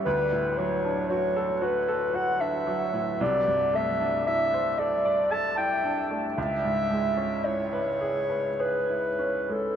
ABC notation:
X:1
M:3/4
L:1/16
Q:1/4=57
K:C#phr
V:1 name="Clarinet"
B2 c2 c2 B2 f e3 | d2 e2 e2 d2 a =g2 z | e4 c4 B3 A |]
V:2 name="Grand piano"
D,, A,, F, D F A F A F D F, A,, | =C,, =G,, A, D E =c A d A E D A, | C,, G,, G, C E B G B G E C G, |]